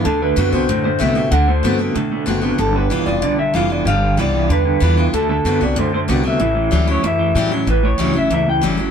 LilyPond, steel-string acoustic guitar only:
\new Staff \with { instrumentName = "Steel-string acoustic guitar" } { \time 4/4 \key d \mixolydian \tempo 4 = 189 << { r4 <d a c' fis'>8 <c' fis'>8 r4 <d a c' fis'>8 <c' fis'>8 | r4 <d a c' fis'>8 <c' fis'>8 r4 <d a c' fis'>8 <c' fis'>8 | r4 <g b f'>8 <b f'>8 r4 <g b f'>8 <b f'>8 | r4 <g b f'>4 r4 <g b f'>8 <b f'>8 |
r4 <d a c' fis'>8 <c' fis'>8 r4 <d a c' fis'>8 <c' fis'>8 | r4 <e g cis' e'>8 <cis' e'>8 r4 <e g cis' e'>8 <cis' e'>8 | r4 <e g cis' e'>8 <cis' e'>8 r4 <e g cis' e'>8 <cis' e'>8 | } \\ { d2 a,2 | d2 a,2 | g2 d2 | g2 d2 |
d2 a,2 | a,2 e,2 | a,2 e,2 | } >> }